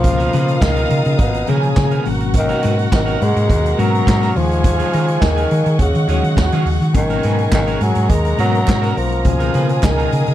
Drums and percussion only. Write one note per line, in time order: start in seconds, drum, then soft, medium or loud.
0.04 kick loud
0.04 closed hi-hat medium
0.20 closed hi-hat soft
0.33 closed hi-hat medium
0.48 closed hi-hat medium
0.61 kick loud
0.61 snare loud
0.61 clap loud
0.76 closed hi-hat soft
0.90 closed hi-hat medium
1.05 closed hi-hat medium
1.19 kick loud
1.19 closed hi-hat medium
1.34 closed hi-hat medium
1.47 closed hi-hat medium
1.63 closed hi-hat soft
1.77 kick loud
1.77 snare loud
1.77 clap medium
1.91 closed hi-hat soft
2.05 open hi-hat medium
2.20 closed hi-hat soft
2.34 kick loud
2.34 closed hi-hat medium
2.49 closed hi-hat soft
2.63 closed hi-hat medium
2.79 closed hi-hat soft
2.92 kick loud
2.92 snare loud
2.92 clap loud
3.08 closed hi-hat soft
3.22 closed hi-hat medium
3.36 closed hi-hat soft
3.50 kick loud
3.50 closed hi-hat medium
3.66 closed hi-hat medium
3.79 closed hi-hat medium
3.95 closed hi-hat soft
4.07 kick loud
4.07 snare loud
4.07 clap loud
4.23 snare soft
4.23 closed hi-hat soft
4.36 open hi-hat medium
4.51 closed hi-hat soft
4.64 kick loud
4.64 closed hi-hat loud
4.79 closed hi-hat medium
4.93 closed hi-hat medium
5.08 closed hi-hat soft
5.22 kick loud
5.22 snare loud
5.22 clap medium
5.38 closed hi-hat medium
5.51 closed hi-hat medium
5.66 closed hi-hat medium
5.79 kick loud
5.79 closed hi-hat medium
5.95 closed hi-hat medium
6.09 closed hi-hat medium
6.24 closed hi-hat soft
6.37 kick loud
6.37 snare loud
6.37 clap medium
6.52 snare soft
6.52 closed hi-hat soft
6.66 open hi-hat medium
6.82 closed hi-hat soft
6.94 kick loud
6.94 closed hi-hat loud
7.10 closed hi-hat medium
7.23 closed hi-hat medium
7.38 closed hi-hat soft
7.52 kick medium
7.52 snare loud
7.52 clap medium
7.52 clap loud
7.67 closed hi-hat soft
7.81 closed hi-hat medium
7.95 closed hi-hat medium
8.09 kick loud
8.09 closed hi-hat medium
8.25 closed hi-hat medium
8.38 closed hi-hat medium
8.55 closed hi-hat soft
8.68 kick loud
8.68 snare loud
8.68 clap loud
8.68 clap medium
8.83 snare soft
8.83 closed hi-hat soft
8.97 open hi-hat medium
9.12 closed hi-hat soft
9.25 kick loud
9.25 closed hi-hat medium
9.40 closed hi-hat medium
9.54 closed hi-hat medium
9.69 closed hi-hat soft
9.83 kick loud
9.83 snare loud
9.83 clap loud
9.99 closed hi-hat soft
10.12 closed hi-hat medium
10.26 closed hi-hat soft